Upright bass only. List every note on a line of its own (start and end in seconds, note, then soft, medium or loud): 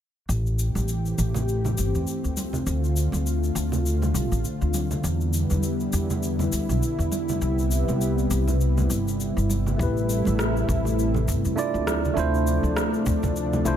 0.29 0.70 A1 medium
0.75 1.14 A1 medium
1.18 1.74 A1 medium
1.78 1.91 G1 medium
1.95 2.05 E2 medium
2.24 2.63 D2 medium
2.66 3.08 D2 medium
3.13 3.52 D2 medium
3.55 4.11 D2 medium
4.14 4.28 C2 medium
4.32 4.42 A1 medium
4.61 5.00 D2 medium
5.04 5.45 E2 medium
5.51 5.89 E2 medium
5.93 6.49 E2 medium
6.52 6.66 D2 medium
6.69 6.80 B1 medium
6.98 7.37 E2 medium
7.41 7.83 C2 medium
7.88 8.27 C2 medium
8.31 8.86 C2 medium
8.90 9.31 G1 medium
9.37 9.75 G1 medium
9.79 10.21 A1 medium
10.27 10.65 A1 medium
10.69 11.24 A1 medium
11.28 11.42 G1 medium
11.45 11.55 E2 medium
11.74 12.13 D2 medium
12.16 12.58 D2 medium
12.63 13.02 D2 medium
13.06 13.62 D2 medium
13.65 13.77 C2 medium